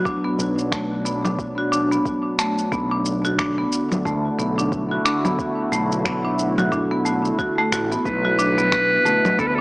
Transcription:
0.00 2.72 B2 medium
0.00 2.72 F#3 medium
0.00 3.76 D4 medium
0.05 0.23 D4 medium
0.05 kick loud
0.05 shaker soft
0.24 0.71 B3 medium
0.39 1.97 B1 medium
0.39 shaker medium
0.59 shaker soft
0.72 1.04 A3 medium
0.72 finger snap medium
0.72 kick loud
0.72 shaker soft
1.05 1.24 B3 medium
1.05 shaker medium
1.25 1.38 D4 medium
1.25 low conga medium
1.25 shaker soft
1.39 kick loud
1.39 shaker soft
1.58 1.71 F#4 medium
1.72 1.89 D4 medium
1.72 shaker medium
1.91 2.37 B3 medium
1.91 shaker soft
2.05 kick medium
2.05 shaker soft
2.39 2.71 A3 medium
2.39 finger snap medium
2.39 shaker medium
2.58 shaker soft
2.72 3.64 B1 medium
2.72 8.05 D3 medium
2.72 2.90 B3 medium
2.72 kick loud
2.72 shaker soft
2.91 3.05 D4 medium
3.05 shaker medium
3.25 8.05 A3 medium
3.25 3.37 F#4 medium
3.25 shaker soft
3.39 3.56 D4 medium
3.39 finger snap medium
3.39 kick loud
3.39 shaker soft
3.58 4.04 B3 medium
3.62 9.61 E4 medium
3.72 shaker medium
3.85 9.61 F#4 medium
3.92 low conga medium
3.92 shaker soft
4.05 4.28 D2 medium
4.05 4.37 A3 medium
4.05 kick loud
4.05 shaker soft
4.39 4.97 B1 medium
4.39 4.57 B3 medium
4.39 shaker medium
4.58 4.71 D4 medium
4.58 shaker soft
4.72 kick loud
4.72 shaker soft
4.91 5.04 F#4 medium
5.05 5.23 D4 medium
5.05 finger snap medium
5.05 shaker medium
5.25 5.71 B3 medium
5.25 low conga medium
5.25 shaker soft
5.39 kick loud
5.39 shaker soft
5.72 7.30 B1 medium
5.72 6.04 A3 medium
5.72 shaker medium
5.92 shaker soft
6.05 6.24 B3 medium
6.05 finger snap medium
6.05 kick loud
6.05 shaker soft
6.25 6.38 D4 medium
6.39 shaker medium
6.58 6.71 F#4 medium
6.58 low conga medium
6.58 shaker soft
6.72 6.89 D4 medium
6.72 kick loud
6.72 shaker soft
6.91 7.04 B3 medium
7.05 7.24 A3 medium
7.05 shaker medium
7.25 shaker soft
7.39 7.57 F#4 medium
7.39 kick medium
7.39 shaker soft
7.58 7.71 A3 medium
7.72 7.95 A1 medium
7.72 7.90 F#4 medium
7.72 finger snap medium
7.72 shaker medium
7.92 8.04 B3 medium
7.92 shaker soft
8.05 8.97 B1 medium
8.05 9.61 B2 medium
8.05 9.41 B4 loud
8.05 kick loud
8.05 shaker soft
8.25 8.37 F#4 medium
8.25 high conga medium
8.39 8.56 D4 medium
8.39 shaker medium
8.58 9.04 B3 medium
8.58 high conga medium
8.58 shaker soft
8.72 9.61 F#3 medium
8.72 finger snap medium
8.72 kick loud
8.72 muted conga soft
8.72 shaker soft
8.82 9.61 D4 medium
9.05 9.37 A3 medium
9.05 muted conga medium
9.05 high conga medium
9.05 low conga medium
9.05 shaker medium
9.24 high conga soft
9.24 low conga medium
9.24 shaker soft
9.39 9.61 D2 medium
9.39 9.57 B3 medium
9.39 9.48 A4 loud
9.39 kick loud
9.39 muted conga soft
9.39 shaker soft
9.47 9.56 B4 medium
9.55 9.61 A4 loud

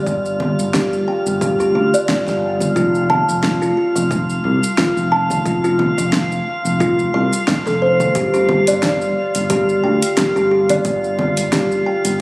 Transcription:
0.00 12.21 F4 medium
0.00 0.57 D5 medium
0.00 12.21 F5 medium
0.07 0.51 G1 medium
0.07 kick loud
0.07 shaker medium
0.25 shaker soft
0.40 low conga medium
0.59 1.01 G1 medium
0.59 shaker medium
0.74 1.06 G4 medium
0.74 kick loud
0.74 snare loud
0.74 shaker medium
0.93 shaker soft
1.08 1.40 G5 medium
1.26 1.68 G1 medium
1.26 shaker medium
1.41 1.58 G4 medium
1.41 kick loud
1.41 shaker medium
1.59 1.74 G4 medium
1.59 udu medium
1.59 shaker soft
1.75 1.89 D2 medium
1.75 1.92 G4 medium
1.94 2.59 D5 medium
1.94 shaker medium
2.09 kick loud
2.09 snare loud
2.09 shaker medium
2.27 2.70 G1 medium
2.27 snare soft
2.27 shaker soft
2.60 low conga medium
2.60 shaker medium
2.76 3.20 F1 loud
2.76 3.08 F4 medium
2.76 kick loud
2.76 shaker medium
2.95 shaker soft
3.10 3.42 A5 medium
3.10 low conga medium
3.29 3.71 F1 medium
3.29 shaker medium
3.43 3.60 F4 medium
3.43 kick loud
3.43 snare medium
3.43 shaker medium
3.62 3.76 F4 loud
3.62 shaker soft
3.77 3.94 F4 medium
3.96 4.38 F1 medium
3.96 4.61 F5 medium
3.96 shaker medium
4.11 kick loud
4.11 shaker medium
4.30 shaker soft
4.44 4.58 C2 medium
4.44 udu medium
4.63 shaker medium
4.78 5.11 F4 loud
4.78 kick loud
4.78 snare loud
4.78 shaker medium
4.97 5.39 F1 medium
4.97 shaker soft
5.12 5.44 A5 medium
5.30 low conga medium
5.30 shaker medium
5.45 5.90 F1 medium
5.45 5.62 F4 medium
5.45 kick loud
5.45 shaker medium
5.64 5.78 F4 loud
5.64 shaker soft
5.79 5.96 F4 medium
5.79 low conga medium
5.98 6.40 F1 medium
5.98 6.64 F5 medium
5.98 udu medium
5.98 shaker medium
6.13 kick loud
6.13 snare medium
6.13 shaker medium
6.32 shaker soft
6.65 7.07 F1 medium
6.65 shaker medium
6.80 6.97 F4 loud
6.80 kick loud
6.80 shaker medium
6.99 udu medium
6.99 shaker soft
7.14 7.28 C2 medium
7.14 7.32 F5 loud
7.33 shaker medium
7.48 7.66 F5 loud
7.48 kick loud
7.48 snare medium
7.48 shaker medium
7.66 8.09 F1 medium
7.66 7.81 A4 medium
7.66 snare soft
7.66 shaker soft
7.82 7.92 C5 medium
8.00 8.14 F5 medium
8.00 low conga medium
8.00 shaker medium
8.15 8.59 G1 medium
8.15 8.32 G4 medium
8.15 kick loud
8.15 closed hi-hat soft
8.15 shaker medium
8.34 8.48 G4 loud
8.34 shaker soft
8.49 8.66 G4 medium
8.49 low conga medium
8.67 9.10 G1 medium
8.67 9.33 D5 medium
8.67 closed hi-hat medium
8.67 shaker medium
8.83 kick loud
8.83 snare loud
8.83 closed hi-hat soft
8.83 shaker medium
9.02 shaker soft
9.35 9.77 G1 medium
9.35 closed hi-hat medium
9.35 shaker medium
9.50 9.82 G4 loud
9.50 kick medium
9.50 closed hi-hat soft
9.50 shaker medium
9.69 shaker soft
9.84 9.97 D2 medium
9.84 10.16 G5 medium
9.84 udu medium
10.02 closed hi-hat medium
10.02 shaker medium
10.17 10.34 G4 medium
10.17 kick loud
10.17 snare medium
10.17 closed hi-hat soft
10.17 shaker medium
10.36 10.78 G1 medium
10.36 10.50 G4 loud
10.36 shaker soft
10.51 10.68 G4 medium
10.69 11.36 D5 medium
10.69 closed hi-hat soft
10.69 low conga medium
10.69 shaker medium
10.85 11.29 G1 loud
10.85 kick loud
10.85 closed hi-hat soft
10.85 shaker medium
11.04 shaker soft
11.19 low conga medium
11.37 11.80 G1 medium
11.37 closed hi-hat medium
11.37 shaker medium
11.52 11.85 G4 medium
11.52 kick medium
11.52 snare medium
11.52 closed hi-hat soft
11.52 shaker soft
11.72 shaker soft
11.86 12.19 G5 medium
12.05 12.21 G1 medium
12.05 closed hi-hat medium
12.05 shaker medium

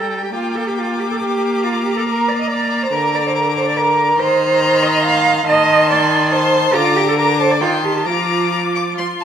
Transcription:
0.00 0.30 G3 medium
0.00 0.22 A4 medium
0.00 1.59 G5 medium
0.00 0.29 A#5 medium
0.23 0.27 G4 medium
0.33 2.89 A#3 medium
0.33 0.57 F4 medium
0.33 2.88 D6 medium
0.56 0.69 A4 medium
0.67 0.79 G4 medium
0.78 1.01 F4 medium
1.00 1.10 G4 medium
1.11 1.15 A4 medium
1.21 1.66 G4 medium
1.63 1.84 F4 medium
1.63 4.14 A#5 medium
1.85 1.96 G4 medium
1.97 2.01 A4 medium
2.07 2.30 A#4 medium
2.28 2.39 D5 medium
2.40 2.49 D#5 medium
2.50 2.85 D5 medium
2.83 2.95 C5 medium
2.92 4.16 D3 medium
2.92 3.16 A#4 medium
2.92 4.14 D6 medium
3.15 3.28 D5 medium
3.26 3.35 C5 medium
3.36 3.44 A#4 medium
3.57 3.67 C5 medium
3.67 3.78 D5 medium
3.77 4.20 A#4 medium
4.18 5.43 D#3 medium
4.18 4.84 C5 medium
4.18 5.42 A#5 medium
4.18 5.43 C6 medium
4.83 5.04 D#5 loud
5.05 5.46 F5 loud
5.46 6.71 D#3 medium
5.46 5.89 D#5 loud
5.46 6.29 A5 medium
5.46 6.30 C6 medium
5.90 6.34 D5 loud
6.30 6.76 C5 loud
6.30 6.75 A5 medium
6.30 6.77 C6 medium
6.74 7.63 D3 medium
6.74 6.98 F4 loud
6.74 7.17 A#5 medium
6.74 7.17 D6 medium
6.96 7.10 G4 loud
7.08 7.17 A4 medium
7.18 7.26 A#4 loud
7.18 7.42 A#5 medium
7.18 7.63 D6 medium
7.39 7.52 C5 medium
7.39 7.61 A5 medium
7.51 7.61 D5 medium
7.61 8.08 D#3 medium
7.61 7.70 F4 medium
7.61 7.86 G5 medium
7.61 8.07 C6 medium
7.84 7.95 G4 medium
7.84 8.07 A5 medium
7.96 8.01 G4 medium
8.06 8.98 F3 medium
8.06 9.19 F4 medium
8.06 8.47 A#5 medium
8.06 8.96 D6 medium
8.52 8.60 A#5 medium
8.76 8.84 D6 medium
8.98 9.07 F3 medium
8.98 9.22 C6 medium
8.98 9.06 C6 medium
9.20 9.24 A5 medium

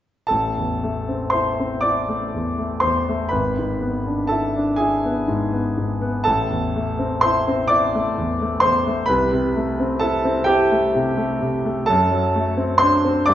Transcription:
0.27 3.29 A1 soft
0.27 1.28 A4 soft
0.27 1.31 A5 medium
0.58 0.98 E2 soft
0.83 1.24 A3 soft
1.09 1.49 C4 soft
1.30 1.74 E4 soft
1.30 1.79 C5 soft
1.30 1.82 C6 medium
1.60 2.00 C4 soft
1.81 2.24 E4 soft
1.81 2.79 D5 medium
1.81 2.82 D6 medium
2.09 2.49 A3 soft
2.34 2.74 E2 soft
2.58 2.98 A3 soft
2.80 3.23 E2 soft
2.80 3.29 C5 soft
2.80 3.32 C6 medium
3.08 3.33 A3 soft
3.29 6.21 G#1 soft
3.29 4.26 B4 soft
3.29 4.29 B5 medium
3.58 3.97 G#2 soft
3.81 4.21 B3 soft
4.07 4.46 D4 soft
4.27 4.70 E4 soft
4.27 4.75 A4 soft
4.27 4.78 A5 medium
4.56 4.95 D4 soft
4.76 5.19 E4 soft
4.76 6.20 G#4 medium
4.76 6.24 G#5 medium
5.05 5.44 B3 soft
5.28 5.67 G#2 soft
5.52 5.91 B3 soft
5.77 6.16 G#2 soft
6.01 6.26 B3 soft
6.24 9.06 A1 soft
6.24 7.19 A4 medium
6.24 7.22 A5 medium
6.50 6.89 E2 soft
6.76 7.14 A3 soft
6.99 7.37 C4 soft
7.21 7.62 E4 soft
7.21 7.67 C5 medium
7.21 7.70 C6 medium
7.48 7.85 C4 soft
7.68 8.08 E4 soft
7.68 8.59 D5 medium
7.68 8.62 D6 medium
7.95 8.32 A3 soft
8.18 8.55 E2 soft
8.41 8.78 A3 soft
8.60 9.01 E2 soft
8.60 9.05 C5 medium
8.60 9.08 C6 medium
8.87 9.10 A3 soft
9.06 11.84 C2 soft
9.06 9.98 B4 medium
9.06 10.01 B5 medium
9.32 9.70 C3 soft
9.56 9.94 A3 soft
9.80 10.17 C4 soft
9.99 10.40 E4 soft
9.99 10.44 A4 medium
9.99 10.47 A5 medium
10.25 10.62 C4 soft
10.44 11.83 G4 medium
10.44 11.86 G5 medium
10.48 10.86 E4 soft
10.72 11.09 A3 soft
10.95 11.32 C3 soft
11.17 11.55 A3 soft
11.41 11.79 C3 soft
11.65 11.88 A3 soft
11.86 13.25 F#2 medium
11.86 12.77 A4 medium
11.86 12.80 A5 medium
12.11 12.49 F#3 soft
12.36 12.73 A3 soft
12.57 12.95 C4 soft
12.78 13.19 D4 soft
12.78 13.24 C5 medium
12.78 13.27 C6 medium
13.05 13.28 C4 soft
13.26 13.34 G2 medium
13.26 13.34 D5 medium
13.26 13.34 D6 medium

